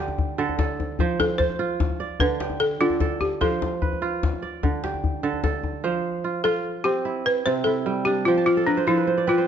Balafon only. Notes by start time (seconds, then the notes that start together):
1.20 A4
1.38 C5
2.20 B4
2.60 A4
2.81 F4
3.21 G4
3.41 A4
6.44 A4
6.84 G4
7.26 B4
7.46 C5
7.64 A4
8.05 G4
8.25 F4
8.46 F4
8.67 D4
8.88 E4
9.29 F4